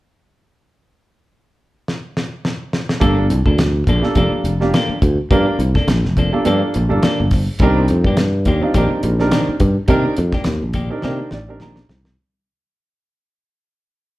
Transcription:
1.88 snare
2.17 snare
2.45 snare
2.73 snare
2.89 snare
3.00 fretless electric bass G1, clean electric guitar F3 A#3 D4 A4, grand piano G3 A#3 D4 F4 A4, kick, closed hi-hat
3.18 muted clean electric guitar stroke
3.29 fretless electric bass C2, grand piano F4 A4, muted clean electric guitar stroke, closed hi-hat
3.46 fretless electric bass D2, clean electric guitar A#3 D4 A4, kick
3.58 muted clean electric guitar stroke, snare, closed hi-hat
3.87 fretless electric bass A#1, clean electric guitar F3 A#3 D4 A4, kick, closed hi-hat
4.02 grand piano G3 A#3 D4 F4 A4, muted fretless electric bass stroke, muted clean electric guitar stroke, snare
4.15 fretless electric bass F1, clean electric guitar F3 A#3 D4 A4, grand piano G3 A#3 D4 F4 A4, kick, closed hi-hat
4.32 muted fretless electric bass stroke, muted clean electric guitar stroke
4.44 fretless electric bass F1, muted clean electric guitar stroke, closed hi-hat
4.60 grand piano G3 A#3 D4 F4 G4, snare
4.74 clean electric guitar F3 A#3 D4 A4, snare, closed hi-hat
4.89 muted fretless electric bass stroke, muted clean electric guitar stroke
5.02 fretless electric bass D2, grand piano F4 A4, muted clean electric guitar stroke, kick, closed hi-hat
5.31 fretless electric bass G2, clean electric guitar F3 A#3 D4 A4, grand piano G3 A#3 D4 F4 A#4, kick, closed hi-hat
5.47 muted clean electric guitar stroke
5.59 fretless electric bass C2, grand piano F4 C5, muted clean electric guitar stroke, closed hi-hat
5.75 clean electric guitar A#3 D4 A4, muted fretless electric bass stroke, kick, snare
5.88 fretless electric bass A#1, muted clean electric guitar stroke, snare, closed hi-hat
6.04 fretless electric bass F1, snare
6.17 clean electric guitar F3 A#3 D4 A4, kick, closed hi-hat
6.32 grand piano G3 A#3 D4 F4 A4, muted clean electric guitar stroke
6.44 fretless electric bass G2, clean electric guitar F3 A#3 D4 A4, grand piano G3 A#3 D4 F4 A4, closed hi-hat
6.62 muted clean electric guitar stroke
6.74 fretless electric bass A#1, muted clean electric guitar stroke, closed hi-hat
6.88 fretless electric bass G1, grand piano G3 A#3 D4 F4 A4
7.03 clean electric guitar F3 A#3 D4 A4, snare, closed hi-hat
7.20 fretless electric bass G1, muted clean electric guitar stroke
7.31 grand piano F4 C5, muted clean electric guitar stroke, kick, snare, open hi-hat
7.59 fretless electric bass C2, clean electric guitar D#3 A#3 D4, grand piano G3 C4 D4 D#4 A#4, kick, closed hi-hat
7.63 clean electric guitar G4
7.79 muted clean electric guitar stroke
7.88 fretless electric bass F2, grand piano D#4 C5, muted clean electric guitar stroke, closed hi-hat
8.04 fretless electric bass G2, clean electric guitar A#3 D4 G4, kick
8.17 muted clean electric guitar stroke, snare, closed hi-hat
8.45 fretless electric bass D#2, clean electric guitar D#3 A#3 D4 G4, kick, closed hi-hat
8.61 grand piano G3 C4 D4 D#4 F4, muted clean electric guitar stroke, muted fretless electric bass stroke
8.74 fretless electric bass A#1, clean electric guitar D#3 A#3 D4 G4, grand piano G3 C4 D4 D#4 A#4, kick, closed hi-hat
8.91 muted clean electric guitar stroke, muted fretless electric bass stroke
9.03 fretless electric bass A#1, muted clean electric guitar stroke, closed hi-hat
9.19 grand piano G3 C4 D4 D#4 A#4, snare
9.32 clean electric guitar D#3 A#3 D4 G4, snare, closed hi-hat
9.47 muted clean electric guitar stroke, muted fretless electric bass stroke
9.60 fretless electric bass G2, grand piano D#4 A#4, muted clean electric guitar stroke, kick, closed hi-hat
9.88 fretless electric bass C3, clean electric guitar D#3 A#3 D4 G4, grand piano G3 C4 D4 D#4 A#4, kick, closed hi-hat
10.05 muted clean electric guitar stroke
10.17 fretless electric bass F2, grand piano D#4 A#4, muted clean electric guitar stroke, closed hi-hat
10.32 clean electric guitar A#3 D4 G4, muted fretless electric bass stroke, kick, snare
10.44 fretless electric bass D#2, muted clean electric guitar stroke, snare, closed hi-hat
10.62 fretless electric bass A#1
10.73 clean electric guitar D#3 A#3 D4 G4, kick, closed hi-hat
10.90 grand piano G3 C4 D4 D#4 A#4, muted clean electric guitar stroke
11.02 fretless electric bass C3, clean electric guitar D#3 A#3 D4 G4, grand piano G3 C4 D4 D#4 A#4, snare
11.19 muted clean electric guitar stroke
11.31 fretless electric bass A1, grand piano D5, muted clean electric guitar stroke, snare
11.48 grand piano G3 C4 D4 D#4 A#4
11.60 fretless electric bass A#1, clean electric guitar D#3 A#3 D4 G4, grand piano A#5, snare
11.76 muted clean electric guitar stroke, snare
11.88 fretless electric bass C2, grand piano D#4 C5, muted clean electric guitar stroke, snare
12.05 snare

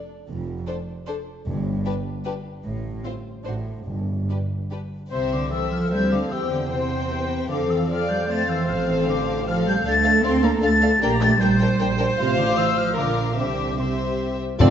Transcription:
0.28 double bass section F1, cello section F2
0.67 viola section D4, violin section A4 C5
1.07 viola section D4, violin section A4 C5
1.46 double bass section G1, cello section G2, timpani G2
1.85 viola section D4, violin section G4 B4
2.25 viola section D4, violin section G4 B4
2.65 double bass section A1, cello section A2
3.04 viola section C4, violin section F4 C5
3.44 double bass section A1, cello section A2, viola section D4, violin section F#4 C5
3.86 double bass section G1, cello section G2, timpani G2
4.29 viola section D4, violin section G4 B4
4.71 viola section D4, violin section G4 B4
5.11 double bass section C2, cello section C3, violin section C4 C5 E5, viola section C5, flute section C6
5.32 cello section D3, flute section D6
5.51 cello section E3, violin section C4 C5 E5, viola section A4, flute section E6
5.71 cello section F3, flute section F6
5.91 double bass section D2, cello section G3, violin section C4 C5 E5, flute section G6
6.11 cello section D3, violin section F5, flute section D6
6.30 double bass section E2, cello section E3, violin section C4 C5 G5, viola section G4, flute section E6
6.50 cello section D3, flute section D6
6.70 cello section C3, violin section C4 C5 G5, viola section C5, flute section C6
7.11 violin section B4
7.50 double bass section F2, cello section D3, violin section C4 A4 F5, viola section A4, flute section D6
7.69 cello section E3, flute section E6
7.89 cello section F3, violin section C4 A4 F5, viola section D5, flute section F6
8.09 cello section G3, flute section G6
8.28 cello section A3, violin section C4 A4 F5, viola section C5, flute section A6
8.49 cello section E3, flute section E6
8.67 double bass section A1, cello section F3, violin section C4 A4 F5, flute section F6
8.88 cello section E3, flute section E6
9.07 cello section D3, flute section D6
9.46 cello section F3, violin section C4 A4 F5, viola section A4, flute section F6
9.67 cello section G3, flute section G6
9.85 double bass section D2, cello section A3, violin section D4 A4 F5, viola section A4, flute section A6
10.03 violin section D4 A4 F5
10.24 double bass section D2, cello section C4, violin section D4 A4 F5, flute section C6
10.43 cello section A#3, violin section D4 A4 F5, flute section A#5
10.62 double bass section D2, cello section A3, violin section D4 A4 F5, flute section A6
10.81 violin section D4 A4 F5
11.01 double bass section A#1, cello section A#3, violin section D4 A#4 G5, viola section G4, flute section A#5
11.21 cello section A3, violin section D4 A#4 G5, flute section A6
11.40 double bass section A#1, cello section G3, violin section D4 A#4 G5, viola section C5, flute section G6
11.60 violin section D4 A#4 G5
11.79 double bass section A#1, violin section D4 A#4 G5
11.99 violin section D4 A#4 G5
12.19 double bass section A1, cello section C3, violin section F4 C5 F5, flute section C6
12.38 cello section D3, flute section D6
12.58 cello section E3, flute section E6
12.77 cello section F3, flute section F6
12.96 double bass section A#1, cello section D3, violin section F4 A#4 F5, viola section A#4, flute section D6
13.37 double bass section C2, cello section D3, violin section C4 C5 E5, viola section G4, flute section D6
13.78 cello section C3, violin section C4 C5 E5, flute section C6
14.59 timpani F2, double bass section F2, cello section D3, french horn section A3 F4, viola section C4 F4, clarinet C4, violin section D4 D5, cor anglais A4, flute section C6

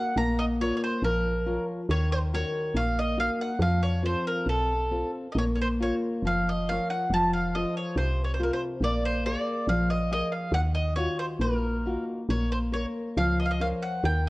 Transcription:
Already playing: nylon-string guitar A#3, mandolin F#5
0.16 fm bass A#1, nylon-string guitar A#3, mandolin A#5
0.39 mandolin D#5
0.61 nylon-string guitar F4 A#4 C#5, mandolin C#5
0.77 mandolin C#5
0.84 mandolin C5
1.02 fm bass A#1, nylon-string guitar F3, mandolin A#4
1.46 nylon-string guitar F4 A#4 C#5
1.89 fm bass D#2, nylon-string guitar D#3, mandolin C#5
2.12 mandolin C5
2.33 nylon-string guitar D#4 F#4 A#4, mandolin C#5
2.74 fm bass A#1, nylon-string guitar A#3, mandolin F5
2.99 mandolin D#5
3.17 nylon-string guitar D#4 F#4 A#4, mandolin F5
3.41 mandolin F#5
3.59 fm bass F2, nylon-string guitar F3, mandolin F5
3.83 mandolin C#5
4.02 nylon-string guitar C4 F4 A4, mandolin C5
4.27 mandolin A#4
4.46 fm bass B1, mandolin A4
4.91 nylon-string guitar C4 F4 A4
5.32 fm bass A#1, nylon-string guitar A#3, mandolin D#5
5.39 mandolin C#5
5.56 mandolin C#5
5.62 mandolin C5
5.80 nylon-string guitar F4 A#4 C#5, mandolin C#5
6.23 fm bass F#1, nylon-string guitar F3
6.27 mandolin F5
6.49 mandolin D#5
6.69 nylon-string guitar F4 A#4 C#5, mandolin F5
6.90 mandolin F#5
7.10 fm bass F1, nylon-string guitar F3, mandolin A5
7.33 mandolin F5
7.55 nylon-string guitar F4 A4 C5, mandolin D#5
7.77 mandolin C#5
7.96 fm bass C2, nylon-string guitar C3, mandolin C5
8.24 mandolin C#5
8.34 mandolin C5
8.39 nylon-string guitar F4 A4 C5, mandolin A#4
8.53 mandolin C5
8.81 fm bass A#1, nylon-string guitar A#3, mandolin D5
9.05 mandolin C5
9.26 nylon-string guitar G#4 A#4 D5, mandolin D5
9.67 fm bass A#1, nylon-string guitar F3, mandolin F5
9.90 mandolin D#5
10.11 nylon-string guitar G#4 A#4 D5, mandolin D#5
10.32 mandolin F5
10.52 fm bass D#2, nylon-string guitar D#3, mandolin F#5
10.75 mandolin D#5
10.96 nylon-string guitar D#4 F4 F#4, mandolin C#5
11.19 mandolin C5
11.39 fm bass A#1, nylon-string guitar A#3, mandolin A#4
11.86 nylon-string guitar D#4 F4 F#4
12.29 fm bass A#1, nylon-string guitar A#3, mandolin C#5
12.52 mandolin C5
12.72 nylon-string guitar A#4 C#5, mandolin C#5
13.17 fm bass C#2, nylon-string guitar F3, mandolin F5
13.40 mandolin D#5
13.46 mandolin F5
13.51 mandolin D#5
13.60 nylon-string guitar A#4 C5 C#5, mandolin F5
13.83 mandolin F#5
14.04 fm bass D#2, nylon-string guitar D#3, mandolin G5

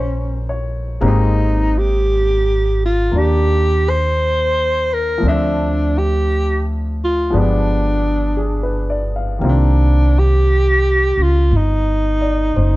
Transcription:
Already playing: upright bass A#1, upright piano F3 G3 A#3 C#4 D#4 F4 G4 A#4 C5, alto saxophone C#4
0.49 upright piano C#5
1.01 upright bass G#1, upright piano G#3 A#3 C4 D#4 G4
1.07 alto saxophone D#4
1.78 alto saxophone G4
2.85 alto saxophone F4
3.11 upright bass D#2, upright piano A#3 D4
3.18 alto saxophone G4
3.90 alto saxophone C5
4.94 alto saxophone A#4
5.18 upright piano F3 A3
5.23 upright bass D2, upright piano C4 D4
5.28 alto saxophone D4, upright piano E5
5.99 alto saxophone G4
7.04 alto saxophone F4
7.30 upright bass G1, upright piano F3 G#3 B3 D4
7.35 alto saxophone D4, upright piano G4
8.37 upright piano G#4
8.63 upright piano B4
8.90 upright piano D5
9.16 upright piano F5
9.39 upright bass C2, upright piano D#3 G3 A#3
9.43 upright piano C4 F4
9.49 alto saxophone D4
10.19 alto saxophone G4
11.18 upright bass C#2
11.22 alto saxophone F4
11.51 upright bass G1
11.56 alto saxophone D#4
12.21 upright piano D5
12.56 upright bass F#1, upright piano C5

